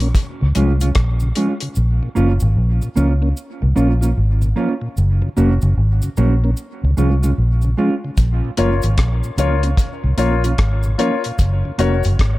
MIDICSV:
0, 0, Header, 1, 7, 480
1, 0, Start_track
1, 0, Key_signature, -5, "minor"
1, 0, Tempo, 802139
1, 1051, Time_signature, 4, 2, 24, 8
1, 7412, End_track
2, 0, Start_track
2, 0, Title_t, "Upright piano"
2, 0, Program_c, 0, 0
2, 5131, Note_on_c, 0, 65, 78
2, 5135, Note_on_c, 0, 70, 76
2, 5139, Note_on_c, 0, 73, 92
2, 5263, Note_off_c, 0, 65, 0
2, 5266, Note_off_c, 0, 70, 0
2, 5267, Note_off_c, 0, 73, 0
2, 5615, Note_on_c, 0, 65, 87
2, 5618, Note_on_c, 0, 70, 79
2, 5622, Note_on_c, 0, 73, 98
2, 5746, Note_off_c, 0, 65, 0
2, 5747, Note_off_c, 0, 70, 0
2, 5749, Note_off_c, 0, 73, 0
2, 6091, Note_on_c, 0, 65, 88
2, 6095, Note_on_c, 0, 70, 75
2, 6098, Note_on_c, 0, 73, 95
2, 6224, Note_off_c, 0, 65, 0
2, 6226, Note_off_c, 0, 70, 0
2, 6227, Note_off_c, 0, 73, 0
2, 6571, Note_on_c, 0, 65, 83
2, 6575, Note_on_c, 0, 70, 86
2, 6578, Note_on_c, 0, 73, 99
2, 6704, Note_off_c, 0, 65, 0
2, 6706, Note_off_c, 0, 70, 0
2, 6708, Note_off_c, 0, 73, 0
2, 7054, Note_on_c, 0, 66, 88
2, 7059, Note_on_c, 0, 70, 77
2, 7061, Note_on_c, 0, 73, 103
2, 7186, Note_off_c, 0, 66, 0
2, 7188, Note_off_c, 0, 70, 0
2, 7189, Note_off_c, 0, 73, 0
2, 7412, End_track
3, 0, Start_track
3, 0, Title_t, "Clean electric guitar"
3, 0, Program_c, 1, 27
3, 332, Note_on_c, 1, 56, 87
3, 338, Note_on_c, 1, 61, 88
3, 340, Note_on_c, 1, 65, 89
3, 426, Note_off_c, 1, 56, 0
3, 430, Note_off_c, 1, 61, 0
3, 430, Note_off_c, 1, 65, 0
3, 487, Note_on_c, 1, 65, 63
3, 492, Note_on_c, 1, 61, 60
3, 496, Note_on_c, 1, 56, 49
3, 528, Note_off_c, 1, 65, 0
3, 531, Note_off_c, 1, 61, 0
3, 533, Note_off_c, 1, 56, 0
3, 818, Note_on_c, 1, 56, 83
3, 820, Note_on_c, 1, 61, 78
3, 823, Note_on_c, 1, 65, 86
3, 909, Note_off_c, 1, 56, 0
3, 910, Note_off_c, 1, 61, 0
3, 912, Note_off_c, 1, 65, 0
3, 1287, Note_on_c, 1, 58, 86
3, 1291, Note_on_c, 1, 61, 84
3, 1295, Note_on_c, 1, 65, 99
3, 1384, Note_off_c, 1, 58, 0
3, 1386, Note_off_c, 1, 61, 0
3, 1388, Note_off_c, 1, 65, 0
3, 1769, Note_on_c, 1, 58, 72
3, 1774, Note_on_c, 1, 61, 79
3, 1777, Note_on_c, 1, 65, 75
3, 1865, Note_off_c, 1, 58, 0
3, 1868, Note_off_c, 1, 61, 0
3, 1869, Note_off_c, 1, 65, 0
3, 2247, Note_on_c, 1, 58, 87
3, 2250, Note_on_c, 1, 61, 86
3, 2253, Note_on_c, 1, 65, 86
3, 2344, Note_off_c, 1, 58, 0
3, 2346, Note_off_c, 1, 61, 0
3, 2347, Note_off_c, 1, 65, 0
3, 2403, Note_on_c, 1, 65, 64
3, 2408, Note_on_c, 1, 61, 52
3, 2411, Note_on_c, 1, 58, 48
3, 2446, Note_off_c, 1, 65, 0
3, 2448, Note_off_c, 1, 61, 0
3, 2450, Note_off_c, 1, 58, 0
3, 2728, Note_on_c, 1, 58, 84
3, 2735, Note_on_c, 1, 61, 78
3, 2737, Note_on_c, 1, 65, 81
3, 2825, Note_off_c, 1, 58, 0
3, 2828, Note_off_c, 1, 61, 0
3, 2829, Note_off_c, 1, 65, 0
3, 3211, Note_on_c, 1, 58, 85
3, 3216, Note_on_c, 1, 61, 83
3, 3218, Note_on_c, 1, 66, 88
3, 3307, Note_off_c, 1, 58, 0
3, 3309, Note_off_c, 1, 61, 0
3, 3310, Note_off_c, 1, 66, 0
3, 3694, Note_on_c, 1, 58, 76
3, 3699, Note_on_c, 1, 61, 86
3, 3700, Note_on_c, 1, 66, 84
3, 3788, Note_off_c, 1, 58, 0
3, 3791, Note_off_c, 1, 61, 0
3, 3791, Note_off_c, 1, 66, 0
3, 4171, Note_on_c, 1, 56, 81
3, 4175, Note_on_c, 1, 61, 80
3, 4179, Note_on_c, 1, 65, 84
3, 4267, Note_off_c, 1, 56, 0
3, 4269, Note_off_c, 1, 61, 0
3, 4271, Note_off_c, 1, 65, 0
3, 4323, Note_on_c, 1, 65, 60
3, 4329, Note_on_c, 1, 61, 57
3, 4330, Note_on_c, 1, 56, 47
3, 4367, Note_off_c, 1, 65, 0
3, 4370, Note_off_c, 1, 56, 0
3, 4370, Note_off_c, 1, 61, 0
3, 4652, Note_on_c, 1, 56, 78
3, 4657, Note_on_c, 1, 61, 78
3, 4659, Note_on_c, 1, 65, 93
3, 4748, Note_off_c, 1, 56, 0
3, 4750, Note_off_c, 1, 61, 0
3, 4751, Note_off_c, 1, 65, 0
3, 5131, Note_on_c, 1, 58, 81
3, 5136, Note_on_c, 1, 61, 90
3, 5140, Note_on_c, 1, 65, 100
3, 5227, Note_off_c, 1, 58, 0
3, 5230, Note_off_c, 1, 61, 0
3, 5232, Note_off_c, 1, 65, 0
3, 5610, Note_on_c, 1, 58, 75
3, 5615, Note_on_c, 1, 61, 82
3, 5620, Note_on_c, 1, 65, 97
3, 5707, Note_off_c, 1, 58, 0
3, 5709, Note_off_c, 1, 61, 0
3, 5712, Note_off_c, 1, 65, 0
3, 6088, Note_on_c, 1, 58, 90
3, 6093, Note_on_c, 1, 61, 87
3, 6098, Note_on_c, 1, 65, 89
3, 6186, Note_off_c, 1, 58, 0
3, 6189, Note_off_c, 1, 61, 0
3, 6191, Note_off_c, 1, 65, 0
3, 6248, Note_on_c, 1, 65, 60
3, 6251, Note_on_c, 1, 61, 59
3, 6256, Note_on_c, 1, 58, 51
3, 6290, Note_off_c, 1, 65, 0
3, 6292, Note_off_c, 1, 61, 0
3, 6294, Note_off_c, 1, 58, 0
3, 6572, Note_on_c, 1, 58, 77
3, 6578, Note_on_c, 1, 61, 83
3, 6582, Note_on_c, 1, 65, 84
3, 6668, Note_off_c, 1, 58, 0
3, 6672, Note_off_c, 1, 61, 0
3, 6673, Note_off_c, 1, 65, 0
3, 7050, Note_on_c, 1, 58, 84
3, 7056, Note_on_c, 1, 61, 91
3, 7059, Note_on_c, 1, 66, 77
3, 7148, Note_off_c, 1, 58, 0
3, 7151, Note_off_c, 1, 61, 0
3, 7152, Note_off_c, 1, 66, 0
3, 7412, End_track
4, 0, Start_track
4, 0, Title_t, "Tonewheel organ"
4, 0, Program_c, 2, 16
4, 7, Note_on_c, 2, 58, 69
4, 11, Note_on_c, 2, 61, 74
4, 48, Note_off_c, 2, 58, 0
4, 49, Note_off_c, 2, 61, 0
4, 247, Note_on_c, 2, 49, 58
4, 287, Note_off_c, 2, 49, 0
4, 332, Note_on_c, 2, 53, 82
4, 337, Note_on_c, 2, 56, 68
4, 339, Note_on_c, 2, 61, 84
4, 405, Note_off_c, 2, 53, 0
4, 407, Note_off_c, 2, 56, 0
4, 408, Note_off_c, 2, 61, 0
4, 490, Note_on_c, 2, 49, 56
4, 529, Note_off_c, 2, 49, 0
4, 731, Note_on_c, 2, 49, 58
4, 769, Note_off_c, 2, 49, 0
4, 817, Note_on_c, 2, 53, 77
4, 818, Note_on_c, 2, 61, 84
4, 819, Note_on_c, 2, 56, 72
4, 887, Note_off_c, 2, 53, 0
4, 888, Note_off_c, 2, 56, 0
4, 888, Note_off_c, 2, 61, 0
4, 972, Note_on_c, 2, 49, 58
4, 1010, Note_off_c, 2, 49, 0
4, 1213, Note_on_c, 2, 46, 62
4, 1250, Note_off_c, 2, 46, 0
4, 1294, Note_on_c, 2, 53, 75
4, 1297, Note_on_c, 2, 58, 67
4, 1299, Note_on_c, 2, 61, 80
4, 1366, Note_off_c, 2, 53, 0
4, 1367, Note_off_c, 2, 58, 0
4, 1368, Note_off_c, 2, 61, 0
4, 1451, Note_on_c, 2, 46, 59
4, 1489, Note_off_c, 2, 46, 0
4, 1691, Note_on_c, 2, 46, 63
4, 1729, Note_off_c, 2, 46, 0
4, 1772, Note_on_c, 2, 53, 77
4, 1774, Note_on_c, 2, 58, 69
4, 1777, Note_on_c, 2, 61, 85
4, 1845, Note_off_c, 2, 53, 0
4, 1846, Note_off_c, 2, 58, 0
4, 1847, Note_off_c, 2, 61, 0
4, 1927, Note_on_c, 2, 58, 65
4, 1930, Note_on_c, 2, 61, 75
4, 1967, Note_off_c, 2, 58, 0
4, 1969, Note_off_c, 2, 61, 0
4, 2166, Note_on_c, 2, 46, 58
4, 2207, Note_off_c, 2, 46, 0
4, 2249, Note_on_c, 2, 53, 75
4, 2250, Note_on_c, 2, 58, 74
4, 2252, Note_on_c, 2, 61, 88
4, 2323, Note_off_c, 2, 53, 0
4, 2324, Note_off_c, 2, 58, 0
4, 2325, Note_off_c, 2, 61, 0
4, 2401, Note_on_c, 2, 46, 62
4, 2444, Note_off_c, 2, 46, 0
4, 2644, Note_on_c, 2, 46, 61
4, 2686, Note_off_c, 2, 46, 0
4, 2731, Note_on_c, 2, 53, 79
4, 2734, Note_on_c, 2, 58, 71
4, 2735, Note_on_c, 2, 61, 83
4, 2805, Note_off_c, 2, 53, 0
4, 2806, Note_off_c, 2, 58, 0
4, 2806, Note_off_c, 2, 61, 0
4, 2881, Note_on_c, 2, 46, 57
4, 2925, Note_off_c, 2, 46, 0
4, 3123, Note_on_c, 2, 42, 60
4, 3125, Note_on_c, 2, 49, 56
4, 3166, Note_off_c, 2, 42, 0
4, 3167, Note_off_c, 2, 49, 0
4, 3211, Note_on_c, 2, 54, 77
4, 3213, Note_on_c, 2, 58, 65
4, 3216, Note_on_c, 2, 61, 81
4, 3285, Note_off_c, 2, 54, 0
4, 3286, Note_off_c, 2, 58, 0
4, 3287, Note_off_c, 2, 61, 0
4, 3368, Note_on_c, 2, 49, 57
4, 3370, Note_on_c, 2, 42, 59
4, 3408, Note_off_c, 2, 49, 0
4, 3409, Note_off_c, 2, 42, 0
4, 3610, Note_on_c, 2, 42, 60
4, 3610, Note_on_c, 2, 49, 59
4, 3649, Note_off_c, 2, 42, 0
4, 3649, Note_off_c, 2, 49, 0
4, 3695, Note_on_c, 2, 54, 78
4, 3697, Note_on_c, 2, 58, 70
4, 3699, Note_on_c, 2, 61, 80
4, 3767, Note_off_c, 2, 54, 0
4, 3768, Note_off_c, 2, 58, 0
4, 3769, Note_off_c, 2, 61, 0
4, 3853, Note_on_c, 2, 58, 67
4, 3858, Note_on_c, 2, 61, 72
4, 3891, Note_off_c, 2, 58, 0
4, 3893, Note_off_c, 2, 61, 0
4, 4097, Note_on_c, 2, 49, 58
4, 4133, Note_off_c, 2, 49, 0
4, 4180, Note_on_c, 2, 53, 79
4, 4180, Note_on_c, 2, 56, 69
4, 4180, Note_on_c, 2, 61, 82
4, 4249, Note_off_c, 2, 53, 0
4, 4249, Note_off_c, 2, 56, 0
4, 4250, Note_off_c, 2, 61, 0
4, 4331, Note_on_c, 2, 49, 61
4, 4370, Note_off_c, 2, 49, 0
4, 4575, Note_on_c, 2, 49, 59
4, 4612, Note_off_c, 2, 49, 0
4, 4659, Note_on_c, 2, 53, 74
4, 4660, Note_on_c, 2, 56, 72
4, 4662, Note_on_c, 2, 61, 88
4, 4729, Note_off_c, 2, 53, 0
4, 4730, Note_off_c, 2, 56, 0
4, 4731, Note_off_c, 2, 61, 0
4, 4815, Note_on_c, 2, 49, 53
4, 4852, Note_off_c, 2, 49, 0
4, 5055, Note_on_c, 2, 46, 60
4, 5092, Note_off_c, 2, 46, 0
4, 5136, Note_on_c, 2, 53, 68
4, 5137, Note_on_c, 2, 58, 65
4, 5139, Note_on_c, 2, 61, 81
4, 5208, Note_off_c, 2, 53, 0
4, 5208, Note_off_c, 2, 58, 0
4, 5210, Note_off_c, 2, 61, 0
4, 5291, Note_on_c, 2, 46, 55
4, 5331, Note_off_c, 2, 46, 0
4, 5534, Note_on_c, 2, 46, 64
4, 5572, Note_off_c, 2, 46, 0
4, 5617, Note_on_c, 2, 53, 70
4, 5618, Note_on_c, 2, 58, 65
4, 5619, Note_on_c, 2, 61, 84
4, 5689, Note_off_c, 2, 53, 0
4, 5689, Note_off_c, 2, 58, 0
4, 5690, Note_off_c, 2, 61, 0
4, 5763, Note_on_c, 2, 58, 62
4, 5766, Note_on_c, 2, 61, 72
4, 5807, Note_off_c, 2, 58, 0
4, 5808, Note_off_c, 2, 61, 0
4, 6007, Note_on_c, 2, 46, 56
4, 6049, Note_off_c, 2, 46, 0
4, 6095, Note_on_c, 2, 53, 75
4, 6098, Note_on_c, 2, 58, 72
4, 6100, Note_on_c, 2, 61, 78
4, 6168, Note_off_c, 2, 53, 0
4, 6169, Note_off_c, 2, 58, 0
4, 6170, Note_off_c, 2, 61, 0
4, 6251, Note_on_c, 2, 46, 62
4, 6291, Note_off_c, 2, 46, 0
4, 6494, Note_on_c, 2, 46, 57
4, 6533, Note_off_c, 2, 46, 0
4, 6580, Note_on_c, 2, 53, 80
4, 6584, Note_on_c, 2, 58, 67
4, 6585, Note_on_c, 2, 61, 83
4, 6651, Note_off_c, 2, 53, 0
4, 6652, Note_off_c, 2, 58, 0
4, 6653, Note_off_c, 2, 61, 0
4, 6738, Note_on_c, 2, 46, 51
4, 6774, Note_off_c, 2, 46, 0
4, 6973, Note_on_c, 2, 42, 58
4, 6973, Note_on_c, 2, 49, 56
4, 7012, Note_off_c, 2, 42, 0
4, 7012, Note_off_c, 2, 49, 0
4, 7055, Note_on_c, 2, 54, 66
4, 7057, Note_on_c, 2, 58, 64
4, 7060, Note_on_c, 2, 61, 78
4, 7128, Note_off_c, 2, 54, 0
4, 7129, Note_off_c, 2, 58, 0
4, 7131, Note_off_c, 2, 61, 0
4, 7211, Note_on_c, 2, 49, 55
4, 7213, Note_on_c, 2, 42, 57
4, 7251, Note_off_c, 2, 49, 0
4, 7252, Note_off_c, 2, 42, 0
4, 7412, End_track
5, 0, Start_track
5, 0, Title_t, "Fingered electric bass"
5, 0, Program_c, 3, 33
5, 0, Note_on_c, 3, 34, 97
5, 64, Note_off_c, 3, 34, 0
5, 253, Note_on_c, 3, 37, 90
5, 325, Note_off_c, 3, 37, 0
5, 337, Note_on_c, 3, 36, 81
5, 543, Note_off_c, 3, 36, 0
5, 575, Note_on_c, 3, 34, 90
5, 782, Note_off_c, 3, 34, 0
5, 1058, Note_on_c, 3, 34, 101
5, 1188, Note_off_c, 3, 34, 0
5, 1296, Note_on_c, 3, 30, 72
5, 1427, Note_off_c, 3, 30, 0
5, 1448, Note_on_c, 3, 32, 92
5, 1522, Note_off_c, 3, 32, 0
5, 1536, Note_on_c, 3, 34, 96
5, 1667, Note_off_c, 3, 34, 0
5, 1776, Note_on_c, 3, 37, 93
5, 1983, Note_off_c, 3, 37, 0
5, 2169, Note_on_c, 3, 36, 88
5, 2243, Note_off_c, 3, 36, 0
5, 2257, Note_on_c, 3, 34, 86
5, 2463, Note_off_c, 3, 34, 0
5, 2498, Note_on_c, 3, 32, 86
5, 2704, Note_off_c, 3, 32, 0
5, 2979, Note_on_c, 3, 30, 109
5, 3109, Note_off_c, 3, 30, 0
5, 3217, Note_on_c, 3, 29, 82
5, 3348, Note_off_c, 3, 29, 0
5, 3367, Note_on_c, 3, 30, 89
5, 3442, Note_off_c, 3, 30, 0
5, 3454, Note_on_c, 3, 32, 94
5, 3587, Note_off_c, 3, 32, 0
5, 3696, Note_on_c, 3, 34, 91
5, 3903, Note_off_c, 3, 34, 0
5, 4090, Note_on_c, 3, 37, 82
5, 4164, Note_off_c, 3, 37, 0
5, 4177, Note_on_c, 3, 36, 83
5, 4384, Note_off_c, 3, 36, 0
5, 4417, Note_on_c, 3, 34, 85
5, 4624, Note_off_c, 3, 34, 0
5, 4895, Note_on_c, 3, 34, 101
5, 5028, Note_off_c, 3, 34, 0
5, 5136, Note_on_c, 3, 30, 82
5, 5268, Note_off_c, 3, 30, 0
5, 5290, Note_on_c, 3, 32, 87
5, 5364, Note_off_c, 3, 32, 0
5, 5375, Note_on_c, 3, 34, 98
5, 5507, Note_off_c, 3, 34, 0
5, 5611, Note_on_c, 3, 37, 96
5, 5821, Note_off_c, 3, 37, 0
5, 6009, Note_on_c, 3, 36, 85
5, 6084, Note_off_c, 3, 36, 0
5, 6090, Note_on_c, 3, 34, 85
5, 6300, Note_off_c, 3, 34, 0
5, 6337, Note_on_c, 3, 32, 89
5, 6545, Note_off_c, 3, 32, 0
5, 6818, Note_on_c, 3, 30, 107
5, 6950, Note_off_c, 3, 30, 0
5, 7054, Note_on_c, 3, 29, 84
5, 7187, Note_off_c, 3, 29, 0
5, 7213, Note_on_c, 3, 30, 81
5, 7287, Note_off_c, 3, 30, 0
5, 7299, Note_on_c, 3, 32, 86
5, 7412, Note_off_c, 3, 32, 0
5, 7412, End_track
6, 0, Start_track
6, 0, Title_t, "Muted clean electric guitar strokes"
6, 1925, Note_on_c, 9, 29, 45
6, 1985, Note_off_c, 9, 29, 0
6, 5765, Note_on_c, 9, 29, 48
6, 5825, Note_off_c, 9, 29, 0
6, 7412, End_track
7, 0, Start_track
7, 0, Title_t, "Drums"
7, 2, Note_on_c, 9, 42, 46
7, 62, Note_off_c, 9, 42, 0
7, 88, Note_on_c, 9, 36, 116
7, 89, Note_on_c, 9, 69, 70
7, 91, Note_on_c, 9, 42, 83
7, 147, Note_off_c, 9, 36, 0
7, 149, Note_off_c, 9, 69, 0
7, 151, Note_off_c, 9, 42, 0
7, 329, Note_on_c, 9, 42, 72
7, 331, Note_on_c, 9, 69, 53
7, 389, Note_off_c, 9, 42, 0
7, 391, Note_off_c, 9, 69, 0
7, 482, Note_on_c, 9, 69, 68
7, 486, Note_on_c, 9, 42, 44
7, 542, Note_off_c, 9, 69, 0
7, 546, Note_off_c, 9, 42, 0
7, 568, Note_on_c, 9, 42, 84
7, 572, Note_on_c, 9, 36, 113
7, 572, Note_on_c, 9, 37, 105
7, 628, Note_off_c, 9, 42, 0
7, 631, Note_off_c, 9, 36, 0
7, 631, Note_off_c, 9, 37, 0
7, 717, Note_on_c, 9, 69, 51
7, 777, Note_off_c, 9, 69, 0
7, 811, Note_on_c, 9, 42, 69
7, 871, Note_off_c, 9, 42, 0
7, 960, Note_on_c, 9, 42, 56
7, 1020, Note_off_c, 9, 42, 0
7, 1050, Note_on_c, 9, 69, 67
7, 1110, Note_off_c, 9, 69, 0
7, 1293, Note_on_c, 9, 69, 52
7, 1353, Note_off_c, 9, 69, 0
7, 1436, Note_on_c, 9, 69, 68
7, 1495, Note_off_c, 9, 69, 0
7, 1686, Note_on_c, 9, 69, 58
7, 1746, Note_off_c, 9, 69, 0
7, 1775, Note_on_c, 9, 69, 66
7, 1835, Note_off_c, 9, 69, 0
7, 2016, Note_on_c, 9, 69, 69
7, 2076, Note_off_c, 9, 69, 0
7, 2255, Note_on_c, 9, 69, 53
7, 2315, Note_off_c, 9, 69, 0
7, 2408, Note_on_c, 9, 69, 72
7, 2468, Note_off_c, 9, 69, 0
7, 2643, Note_on_c, 9, 69, 51
7, 2703, Note_off_c, 9, 69, 0
7, 2975, Note_on_c, 9, 69, 71
7, 3034, Note_off_c, 9, 69, 0
7, 3214, Note_on_c, 9, 69, 49
7, 3274, Note_off_c, 9, 69, 0
7, 3360, Note_on_c, 9, 69, 62
7, 3420, Note_off_c, 9, 69, 0
7, 3602, Note_on_c, 9, 69, 61
7, 3662, Note_off_c, 9, 69, 0
7, 3692, Note_on_c, 9, 69, 76
7, 3752, Note_off_c, 9, 69, 0
7, 3931, Note_on_c, 9, 69, 65
7, 3991, Note_off_c, 9, 69, 0
7, 4174, Note_on_c, 9, 69, 52
7, 4234, Note_off_c, 9, 69, 0
7, 4327, Note_on_c, 9, 69, 74
7, 4387, Note_off_c, 9, 69, 0
7, 4558, Note_on_c, 9, 69, 47
7, 4618, Note_off_c, 9, 69, 0
7, 4891, Note_on_c, 9, 69, 71
7, 4892, Note_on_c, 9, 36, 89
7, 4892, Note_on_c, 9, 42, 81
7, 4951, Note_off_c, 9, 69, 0
7, 4952, Note_off_c, 9, 36, 0
7, 4952, Note_off_c, 9, 42, 0
7, 5130, Note_on_c, 9, 42, 72
7, 5132, Note_on_c, 9, 69, 52
7, 5190, Note_off_c, 9, 42, 0
7, 5192, Note_off_c, 9, 69, 0
7, 5278, Note_on_c, 9, 69, 68
7, 5286, Note_on_c, 9, 42, 48
7, 5338, Note_off_c, 9, 69, 0
7, 5346, Note_off_c, 9, 42, 0
7, 5371, Note_on_c, 9, 42, 93
7, 5373, Note_on_c, 9, 36, 115
7, 5379, Note_on_c, 9, 37, 112
7, 5431, Note_off_c, 9, 42, 0
7, 5433, Note_off_c, 9, 36, 0
7, 5438, Note_off_c, 9, 37, 0
7, 5526, Note_on_c, 9, 69, 59
7, 5586, Note_off_c, 9, 69, 0
7, 5614, Note_on_c, 9, 42, 63
7, 5614, Note_on_c, 9, 69, 70
7, 5674, Note_off_c, 9, 42, 0
7, 5674, Note_off_c, 9, 69, 0
7, 5763, Note_on_c, 9, 42, 48
7, 5823, Note_off_c, 9, 42, 0
7, 5849, Note_on_c, 9, 36, 119
7, 5852, Note_on_c, 9, 42, 81
7, 5855, Note_on_c, 9, 69, 68
7, 5909, Note_off_c, 9, 36, 0
7, 5911, Note_off_c, 9, 42, 0
7, 5915, Note_off_c, 9, 69, 0
7, 6090, Note_on_c, 9, 42, 68
7, 6094, Note_on_c, 9, 69, 56
7, 6150, Note_off_c, 9, 42, 0
7, 6154, Note_off_c, 9, 69, 0
7, 6248, Note_on_c, 9, 42, 47
7, 6249, Note_on_c, 9, 69, 69
7, 6308, Note_off_c, 9, 42, 0
7, 6309, Note_off_c, 9, 69, 0
7, 6333, Note_on_c, 9, 42, 80
7, 6335, Note_on_c, 9, 36, 107
7, 6337, Note_on_c, 9, 37, 103
7, 6393, Note_off_c, 9, 42, 0
7, 6395, Note_off_c, 9, 36, 0
7, 6396, Note_off_c, 9, 37, 0
7, 6481, Note_on_c, 9, 69, 49
7, 6540, Note_off_c, 9, 69, 0
7, 6576, Note_on_c, 9, 42, 74
7, 6636, Note_off_c, 9, 42, 0
7, 6727, Note_on_c, 9, 42, 58
7, 6787, Note_off_c, 9, 42, 0
7, 6814, Note_on_c, 9, 69, 73
7, 6815, Note_on_c, 9, 36, 97
7, 6816, Note_on_c, 9, 42, 81
7, 6874, Note_off_c, 9, 69, 0
7, 6875, Note_off_c, 9, 36, 0
7, 6876, Note_off_c, 9, 42, 0
7, 7053, Note_on_c, 9, 42, 73
7, 7057, Note_on_c, 9, 69, 54
7, 7113, Note_off_c, 9, 42, 0
7, 7117, Note_off_c, 9, 69, 0
7, 7199, Note_on_c, 9, 69, 67
7, 7210, Note_on_c, 9, 42, 49
7, 7259, Note_off_c, 9, 69, 0
7, 7269, Note_off_c, 9, 42, 0
7, 7296, Note_on_c, 9, 36, 108
7, 7298, Note_on_c, 9, 42, 88
7, 7305, Note_on_c, 9, 37, 108
7, 7356, Note_off_c, 9, 36, 0
7, 7358, Note_off_c, 9, 42, 0
7, 7365, Note_off_c, 9, 37, 0
7, 7412, End_track
0, 0, End_of_file